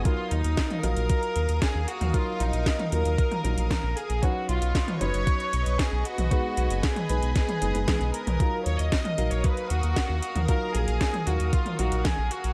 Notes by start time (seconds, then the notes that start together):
Already playing: D#6
0.05 F#3 D#4 F4 A#4 F5, kick, closed hi-hat
0.31 D#2 D#4, closed hi-hat
0.44 D#2, closed hi-hat
0.57 kick, snare, closed hi-hat
0.70 closed hi-hat, high tom
0.83 A#1 F#3 D#4 F4 A#4, closed hi-hat
0.97 A#1, closed hi-hat
1.09 kick, closed hi-hat
1.23 closed hi-hat
1.36 D#2, closed hi-hat
1.49 D#2, closed hi-hat
1.62 G#4, kick, snare, closed hi-hat
1.75 D#2
1.88 F#4, closed hi-hat
2.01 D#2, closed hi-hat, high tom
2.14 F#3 D#4 F4 A#4, kick, closed hi-hat
2.40 A#1 D#4, closed hi-hat
2.53 A#1, closed hi-hat
2.66 kick, snare, closed hi-hat
2.79 closed hi-hat, high tom
2.92 D#2 F#3 D#4 F4 A#4, closed hi-hat
3.05 D#2, closed hi-hat
3.18 kick, closed hi-hat
3.31 closed hi-hat, high tom
3.44 A#1 F#3 D#4 F4 A#4, closed hi-hat
3.58 A#1, closed hi-hat
3.71 A#4, kick, snare, closed hi-hat, high tom
3.84 A#1
3.97 G#4, closed hi-hat
4.10 A#1, closed hi-hat
4.23 F#3 C#4 D#4 F#4 B4 D#5 C#6, kick, closed hi-hat
4.49 B1 F4, closed hi-hat
4.62 B1, closed hi-hat
4.75 kick, snare, closed hi-hat
4.88 closed hi-hat, high tom
5.01 F#1 F#3 C#4 D#4 B4 C#5, closed hi-hat
5.14 F#1, closed hi-hat
5.27 kick, closed hi-hat
5.40 closed hi-hat
5.53 B1, closed hi-hat
5.66 B1, closed hi-hat
5.79 G#4, kick, snare, closed hi-hat
5.92 B1
6.05 F#4, closed hi-hat
6.18 B1, closed hi-hat, high tom
6.31 G#3 B3 D#4 B4 G#5 D#6, kick, closed hi-hat
6.57 B1, closed hi-hat
6.70 F#1, closed hi-hat
6.83 G#4, kick, snare, closed hi-hat
6.96 closed hi-hat, high tom
7.09 B1 G#3 B3 D#4 B4, closed hi-hat
7.23 B1, closed hi-hat
7.36 G#4, kick, snare, closed hi-hat
7.49 closed hi-hat, high tom
7.62 F#1 G#3 B3 D#4 B4, closed hi-hat
7.75 F#1 G#3 B3 D#4 B4, closed hi-hat
7.88 G#4, kick, snare, closed hi-hat, high tom
8.01 B1, closed hi-hat
8.14 A#4, closed hi-hat
8.27 B1, closed hi-hat, high tom
8.40 F#3 D#4 F4 A#4 F5, kick, closed hi-hat
8.66 D#2 C#5, closed hi-hat
8.79 D#2 D#5, closed hi-hat
8.92 D#5, kick, snare, closed hi-hat
9.05 closed hi-hat, high tom
9.18 A#1 F#3 D#4 A#4 F5, closed hi-hat
9.31 A#1 C#5, closed hi-hat
9.44 B4, kick, closed hi-hat
9.57 closed hi-hat
9.70 D#2 F#4, closed hi-hat
9.83 D#2, closed hi-hat
9.96 kick, snare, closed hi-hat
10.10 D#2
10.23 closed hi-hat
10.36 D#2, closed hi-hat, high tom
10.48 F#3 D#4 F4 A#4, kick, closed hi-hat
10.75 A#1 G#4, closed hi-hat
10.88 A#1, closed hi-hat
11.01 kick, snare, closed hi-hat
11.14 closed hi-hat, high tom
11.27 D#2 F#3 D#4 F4 F#4 A#4, closed hi-hat
11.40 D#2, closed hi-hat
11.53 F4, kick, closed hi-hat
11.66 closed hi-hat, high tom
11.79 A#1 F#3 D#4 F4 F#4 A#4, closed hi-hat
11.92 A#1, closed hi-hat
12.05 G#4, kick, snare, closed hi-hat, high tom
12.18 A#1
12.31 F#4, closed hi-hat
12.44 A#1, closed hi-hat